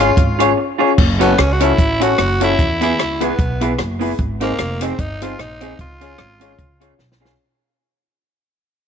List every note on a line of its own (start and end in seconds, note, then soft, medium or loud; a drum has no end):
0.00 0.11 G#1 medium
0.00 0.58 F4 loud
0.00 0.10 G#4 medium
0.00 0.10 C#5 loud
0.00 0.10 C#5 medium
0.17 0.51 G#1 medium
0.17 kick loud
0.17 closed hi-hat medium
0.39 0.50 C#4 medium
0.39 0.50 F4 medium
0.39 0.50 G#4 medium
0.39 0.50 C#5 medium
0.39 0.51 C#5 loud
0.39 closed hi-hat medium
0.57 muted clean electric guitar stroke medium
0.78 0.90 C#4 medium
0.78 0.90 F4 medium
0.78 0.90 G#4 medium
0.78 0.91 C#5 medium
0.78 0.90 C#5 loud
0.98 1.32 F#1 medium
0.98 kick loud
0.98 crash medium
1.19 1.41 B3 medium
1.19 1.30 C#4 medium
1.19 1.31 C#4 medium
1.19 1.31 F#4 medium
1.19 1.31 A4 loud
1.19 1.31 A4 medium
1.19 1.31 C#5 loud
1.19 closed hi-hat medium
1.38 1.72 C#2 loud
1.38 1.54 C#4 medium
1.38 cross-stick loud
1.38 closed hi-hat medium
1.53 1.64 F#4 medium
1.60 1.71 C#4 medium
1.60 2.04 E4 loud
1.60 1.71 F#4 medium
1.60 1.72 F#4 loud
1.60 1.71 A4 medium
1.60 1.72 A4 loud
1.60 1.71 C#5 loud
1.60 closed hi-hat loud
1.78 2.12 A1 loud
1.78 kick loud
1.78 closed hi-hat medium
2.00 2.11 C#4 medium
2.00 2.11 C#4 loud
2.00 2.12 F#4 medium
2.00 2.11 F#4 medium
2.00 2.42 F#4 loud
2.00 2.11 A4 medium
2.00 2.12 A4 loud
2.00 2.12 C#5 loud
2.00 closed hi-hat loud
2.18 2.53 F#1 medium
2.18 cross-stick loud
2.18 closed hi-hat medium
2.40 2.51 C#4 medium
2.40 2.80 E4 loud
2.40 2.51 F#4 medium
2.40 2.52 F#4 medium
2.40 2.51 A4 medium
2.40 2.52 A4 medium
2.40 2.52 C#5 loud
2.40 closed hi-hat medium
2.59 2.99 E2 loud
2.59 kick loud
2.59 closed hi-hat medium
2.81 2.91 B3 medium
2.81 2.92 B3 medium
2.81 2.91 E4 medium
2.81 2.92 E4 medium
2.81 3.25 E4 loud
2.81 2.92 G#4 medium
2.81 2.92 B4 loud
2.81 closed hi-hat medium
2.99 3.33 C#2 loud
2.99 cross-stick loud
2.99 closed hi-hat medium
3.20 3.31 B3 loud
3.20 3.31 B3 medium
3.20 3.80 B3 medium
3.20 3.31 E4 medium
3.20 3.32 E4 medium
3.20 3.31 G#4 medium
3.20 3.32 G#4 loud
3.20 3.32 B4 loud
3.20 closed hi-hat loud
3.39 3.73 B1 loud
3.39 kick loud
3.39 closed hi-hat medium
3.61 3.71 B3 loud
3.61 3.72 B3 medium
3.61 3.71 E4 medium
3.61 3.72 E4 loud
3.61 3.72 G#4 medium
3.61 3.72 G#4 loud
3.61 3.72 B4 loud
3.61 closed hi-hat loud
3.78 4.13 F#1 medium
3.78 muted clean electric guitar stroke soft
3.78 cross-stick loud
3.78 closed hi-hat medium
3.99 4.11 B3 medium
3.99 4.11 E4 medium
3.99 4.12 G#4 medium
3.99 4.12 B4 loud
3.99 open hi-hat medium
4.19 4.53 G#1 loud
4.19 kick medium
4.19 closed hi-hat medium
4.40 4.84 A#3 loud
4.40 4.51 C4 medium
4.40 4.51 D#4 medium
4.40 4.52 D#4 medium
4.40 4.51 G#4 medium
4.40 4.52 G#4 medium
4.40 4.52 C5 loud
4.40 closed hi-hat medium
4.59 4.93 F1 medium
4.59 cross-stick loud
4.59 closed hi-hat medium
4.81 4.91 C4 medium
4.81 4.92 C4 medium
4.81 5.01 C4 medium
4.81 4.92 D#4 medium
4.81 4.92 G#4 medium
4.81 4.93 G#4 medium
4.81 4.92 C5 loud
4.81 closed hi-hat loud
4.99 5.33 G1 loud
4.99 5.24 D#4 loud
4.99 kick loud
4.99 closed hi-hat medium
5.21 5.31 C4 medium
5.21 5.32 C4 medium
5.21 5.32 D#4 medium
5.21 5.33 D#4 medium
5.21 5.42 F4 loud
5.21 5.32 G#4 medium
5.21 5.33 G#4 medium
5.21 5.32 C5 loud
5.21 closed hi-hat loud
5.39 5.73 A#1 medium
5.39 5.80 D#4 loud
5.39 cross-stick loud
5.39 closed hi-hat medium
5.60 5.71 C4 medium
5.60 5.72 C4 medium
5.60 5.71 D#4 medium
5.60 5.72 D#4 medium
5.60 5.72 G#4 medium
5.60 5.73 G#4 medium
5.60 5.72 C5 loud
5.60 closed hi-hat medium
5.79 6.13 C#2 loud
5.79 6.96 F4 loud
5.79 kick loud
5.79 closed hi-hat medium
6.01 6.12 C#4 medium
6.01 6.12 F4 loud
6.01 6.12 F4 medium
6.01 6.12 G#4 medium
6.01 6.12 C#5 medium
6.01 closed hi-hat medium
6.18 6.53 G#1 medium
6.18 cross-stick loud
6.18 closed hi-hat medium
6.40 6.51 C#4 medium
6.40 6.52 F4 medium
6.40 6.52 G#4 medium
6.40 6.52 C#5 loud
6.40 closed hi-hat loud
6.59 6.93 C#2 loud
6.59 kick loud
6.59 closed hi-hat medium
6.80 6.91 C#4 medium
6.80 6.92 C#4 medium
6.80 6.91 F4 medium
6.80 6.92 F4 medium
6.80 6.92 G#4 medium
6.80 6.92 G#4 loud
6.80 6.92 C#5 loud
6.80 closed hi-hat loud
6.98 7.33 B1 medium
6.98 muted clean electric guitar stroke soft
6.98 snare medium
7.12 snare medium
7.20 7.31 C#4 medium
7.20 7.32 C#4 medium
7.20 7.31 F4 medium
7.20 7.32 F4 medium
7.20 7.31 G#4 medium
7.20 7.32 G#4 medium
7.20 7.32 C#5 loud
7.25 snare loud